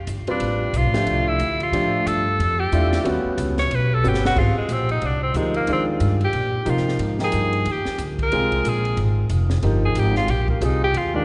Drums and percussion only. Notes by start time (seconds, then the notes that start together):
0.07 hi-hat pedal, ride
0.27 ride
0.40 ride
0.74 hi-hat pedal, ride
0.94 snare, ride
1.07 ride
1.39 hi-hat pedal, ride
1.60 ride
1.73 ride
2.07 hi-hat pedal, ride
2.40 ride
2.72 hi-hat pedal, ride
2.93 snare, ride
3.05 ride
3.38 hi-hat pedal, ride
3.58 snare, ride
3.71 ride
4.04 hi-hat pedal
4.14 snare
4.25 snare
4.36 kick, crash
4.69 hi-hat pedal, ride
4.89 ride
5.02 ride
5.34 hi-hat pedal, ride
5.54 ride
5.67 ride
6.00 hi-hat pedal, ride
6.21 ride
6.33 ride
6.66 hi-hat pedal, ride
6.77 snare
6.88 snare
6.99 ride
7.19 snare
7.32 hi-hat pedal, ride
7.53 ride
7.65 ride
7.85 snare
7.98 hi-hat pedal, ride
8.19 kick, ride
8.32 ride
8.52 kick, ride
8.65 hi-hat pedal, ride
8.85 ride
8.97 ride
9.30 hi-hat pedal, ride
9.50 snare
9.62 ride
9.95 hi-hat pedal, ride
10.15 snare
10.28 ride
10.48 kick
10.61 hi-hat pedal, ride
10.94 ride